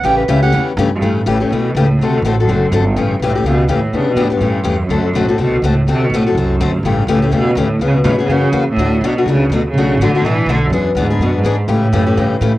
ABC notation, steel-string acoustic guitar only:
X:1
M:4/4
L:1/8
Q:"Swing" 1/4=248
K:Amix
V:1 name="Steel-string acoustic guitar"
[C,E,A,CG] z [C,E,A,CG] [A,CG] [C,E,A,CG] z [C,E,A,CG] z | [C,E,A,CG] z [C,E,A,CG] [A,CG] [C,E,A,CG] z [C,E,A,CG] z | [D,A,=CFA] z [D,A,CFA] [CFA] [D,A,CFA] z [D,A,CFA] z | [C,E,A,CG] z [C,E,A,CG] [A,CG] [C,E,A,CG] z [C,E,A,CG] z |
[E,B,DG] z [E,B,DG] [B,DG] [C,E,A,CG] z [C,E,A,CG] z | [D,A,=CFA] z [D,A,CFA] [CFA] [D,A,CFA] z [D,A,CFA] z | [D,A,=CFA] z [D,A,CFA] [CFA] [D,A,CFA] z [D,A,CFA] z | [C,E,A,CG] z [C,E,A,CG] [A,CG] [C,E,A,CG] z [C,E,A,CG] z |
[C,E,B,C^G] z [C,E,B,CG] [B,CG] [C,E,^A,CF] z [C,E,A,CF] z | [B,,F,A,DF] z [B,,F,A,DF] [A,DF] [B,,F,A,DF] z [B,,F,A,DF] z | [B,,F,A,DF] z [B,,F,A,DF] [A,DF] [B,,F,A,DF] z [B,,F,A,DF] z | [E,B,D^G] z [E,B,DG] [B,DG] [E,B,DG] z [E,B,DG] z |
[C,E,A,CG] z [C,E,A,CG] [A,CG] [C,E,A,CG] z [C,E,A,CG] z |]